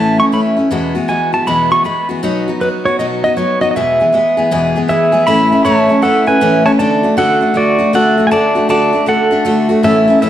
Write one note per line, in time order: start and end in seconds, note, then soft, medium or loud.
0.00 0.18 A2 medium
0.00 0.19 E3 medium
0.00 0.19 A3 medium
0.00 0.19 C#4 medium
0.00 0.17 E4 medium
0.00 0.18 A5 medium
0.18 0.32 A3 soft
0.18 0.32 C#4 soft
0.18 0.32 E4 soft
0.18 0.25 C#6 medium
0.32 0.57 E3 medium
0.32 0.57 A3 medium
0.32 0.56 C#4 medium
0.32 0.55 E4 medium
0.32 0.40 B5 medium
0.57 0.71 A3 soft
0.57 0.71 C#4 soft
0.57 0.71 E4 soft
0.71 0.95 E2 medium
0.71 0.95 B2 medium
0.71 0.95 E3 medium
0.71 0.95 G#3 medium
0.71 0.94 B3 medium
0.71 0.94 F#4 medium
0.95 1.07 E3 soft
0.95 1.07 G#3 medium
0.95 1.08 B3 soft
0.95 1.09 F#4 medium
1.08 1.33 E3 medium
1.08 1.33 G#3 medium
1.08 1.32 B3 medium
1.08 1.31 F#4 medium
1.08 1.33 G#5 medium
1.33 1.46 E3 soft
1.33 1.46 G#3 soft
1.33 1.47 B3 soft
1.33 1.47 F#4 soft
1.33 1.48 A5 medium
1.47 1.71 E2 medium
1.47 1.71 B2 medium
1.47 1.71 E3 medium
1.47 1.71 G#3 medium
1.47 1.70 B3 medium
1.47 1.70 F#4 medium
1.47 1.70 B5 medium
1.71 1.83 E3 soft
1.71 1.84 G#3 soft
1.71 1.84 B3 soft
1.71 1.85 F#4 soft
1.71 1.85 C#6 loud
1.84 2.09 E3 medium
1.84 2.09 G#3 medium
1.84 2.09 B3 medium
1.84 2.08 F#4 medium
1.84 2.08 B5 medium
2.09 2.22 E3 soft
2.09 2.23 G#3 soft
2.09 2.22 B3 soft
2.09 2.23 F#4 medium
2.23 2.47 B2 medium
2.23 2.47 F#3 medium
2.23 2.47 B3 medium
2.23 2.48 D#4 medium
2.23 2.47 F#4 medium
2.48 2.60 B3 soft
2.48 2.61 D#4 medium
2.48 2.61 F#4 medium
2.61 2.85 F#3 medium
2.61 2.86 B3 medium
2.61 2.86 D#4 medium
2.61 2.85 F#4 medium
2.61 2.68 B4 medium
2.85 2.99 B3 soft
2.85 2.99 D#4 soft
2.85 2.99 F#4 soft
2.85 2.99 C#5 medium
2.99 3.23 B2 medium
2.99 3.24 F#3 medium
2.99 3.24 B3 medium
2.99 3.24 D#4 medium
2.99 3.23 F#4 medium
2.99 3.06 D#5 medium
3.24 3.36 B3 soft
3.24 3.37 D#4 soft
3.24 3.37 F#4 medium
3.24 3.37 D#5 medium
3.37 3.61 F#3 medium
3.37 3.62 B3 medium
3.37 3.61 D#4 medium
3.37 3.60 F#4 medium
3.37 3.61 C#5 medium
3.61 3.76 B3 soft
3.61 3.75 D#4 soft
3.61 3.75 F#4 medium
3.61 3.70 D#5 medium
3.71 3.76 D#5 medium
3.76 4.00 E2 medium
3.76 4.00 B2 medium
3.76 4.00 E3 medium
3.76 4.00 G#3 medium
3.76 3.99 B3 medium
3.76 3.98 G#4 medium
3.76 4.88 E5 medium
4.00 4.11 E3 soft
4.00 4.13 G#3 soft
4.00 4.13 B3 soft
4.00 4.13 G#4 soft
4.13 4.37 E3 medium
4.13 4.37 G#3 medium
4.13 4.37 B3 medium
4.13 4.36 G#4 medium
4.37 4.51 E3 soft
4.37 4.51 G#3 soft
4.37 4.51 B3 soft
4.37 4.51 G#4 medium
4.51 4.76 E2 medium
4.51 4.76 B2 medium
4.51 4.76 E3 medium
4.51 4.76 G#3 medium
4.51 4.75 B3 medium
4.51 4.74 G#4 medium
4.76 4.87 E3 soft
4.76 4.88 G#3 soft
4.76 4.89 B3 medium
4.76 4.89 G#4 medium
4.88 5.13 E3 medium
4.88 5.13 G#3 medium
4.88 5.12 B3 medium
4.88 5.11 G#4 medium
4.88 5.25 G#4 medium
4.88 5.26 E5 medium
5.12 5.26 E3 soft
5.12 5.27 G#3 soft
5.12 5.27 B3 medium
5.12 5.27 G#4 medium
5.27 5.51 A2 medium
5.27 5.52 E3 medium
5.27 5.52 A3 medium
5.27 5.51 C#4 medium
5.27 5.50 E4 medium
5.27 5.63 E5 medium
5.27 5.66 B5 loud
5.52 5.64 A3 soft
5.52 5.65 C#4 medium
5.52 5.65 E4 medium
5.65 5.89 A2 medium
5.65 5.90 E3 medium
5.65 5.90 A3 medium
5.65 5.89 C#4 medium
5.65 5.88 E4 medium
5.65 6.01 C#5 medium
5.65 6.04 A5 medium
5.89 6.02 A3 soft
5.89 6.02 C#4 soft
5.89 6.03 E4 medium
6.02 6.27 E3 medium
6.02 6.27 A3 medium
6.02 6.26 C#4 medium
6.02 6.25 E4 medium
6.02 6.26 A4 medium
6.02 6.28 F#5 medium
6.27 6.41 A3 soft
6.27 6.41 C#4 soft
6.27 6.41 E4 medium
6.27 6.63 B4 medium
6.27 6.65 G#5 loud
6.41 6.66 A2 medium
6.41 6.66 E3 medium
6.41 6.66 A3 medium
6.41 6.65 C#4 medium
6.41 6.64 E4 medium
6.65 6.78 A3 soft
6.65 6.80 C#4 soft
6.65 6.79 E4 medium
6.65 6.71 C#5 medium
6.65 6.71 A5 medium
6.79 7.04 D3 medium
6.79 7.04 A3 medium
6.79 7.03 D4 medium
6.79 7.02 F#4 medium
6.79 7.15 D5 medium
6.79 7.14 A5 medium
7.03 7.16 A3 soft
7.03 7.17 D4 medium
7.03 7.17 F#4 medium
7.17 7.42 D3 medium
7.17 7.41 A3 medium
7.17 7.41 D4 medium
7.17 7.40 F#4 medium
7.17 7.53 A4 medium
7.17 7.57 F#5 medium
7.41 7.53 A3 soft
7.41 7.54 D4 soft
7.41 7.54 F#4 soft
7.54 7.79 D3 medium
7.54 7.79 A3 medium
7.54 7.78 D4 medium
7.54 7.77 F#4 medium
7.54 7.95 D5 medium
7.58 7.92 F#4 medium
7.79 7.93 A3 soft
7.79 7.93 D4 medium
7.79 7.93 F#4 medium
7.93 8.18 D3 medium
7.93 8.18 A3 medium
7.93 8.17 D4 medium
7.93 8.16 F#4 medium
7.93 8.25 A4 medium
7.93 8.27 F#5 medium
8.17 8.30 A3 soft
8.17 8.31 D4 soft
8.17 8.31 F#4 medium
8.27 8.31 G#5 medium
8.31 8.56 D3 medium
8.31 8.56 A3 medium
8.31 8.55 D4 medium
8.31 8.54 F#4 medium
8.31 8.68 D5 medium
8.31 8.67 A5 loud
8.55 8.68 A3 soft
8.55 8.69 D4 medium
8.55 8.69 F#4 medium
8.69 8.94 D3 medium
8.69 8.94 A3 medium
8.69 8.93 D4 medium
8.69 8.91 F#4 medium
8.69 9.05 D5 medium
8.69 9.09 A5 medium
8.93 9.06 A3 soft
8.93 9.07 D4 soft
8.93 9.07 F#4 medium
9.06 9.31 D3 medium
9.06 9.32 A3 medium
9.06 9.31 D4 medium
9.06 9.30 F#4 medium
9.06 9.80 A4 medium
9.06 9.86 F#5 medium
9.31 9.44 A3 soft
9.31 9.45 D4 medium
9.31 9.45 F#4 medium
9.45 9.70 D3 medium
9.45 9.70 A3 medium
9.45 9.69 D4 medium
9.45 9.68 F#4 medium
9.69 9.83 A3 medium
9.69 9.84 D4 medium
9.69 9.83 F#4 medium
9.83 10.08 A2 medium
9.83 10.08 E3 medium
9.83 10.08 A3 medium
9.83 10.08 C#4 medium
9.83 10.06 E4 medium
9.83 10.19 A4 medium
9.83 10.21 E5 medium
10.08 10.22 A3 medium
10.08 10.22 C#4 soft
10.08 10.21 E4 medium
10.22 10.30 A2 medium
10.22 10.30 E3 medium
10.22 10.30 A3 medium
10.22 10.30 C#4 medium
10.22 10.30 E4 medium
10.22 10.30 A4 medium
10.22 10.30 E5 medium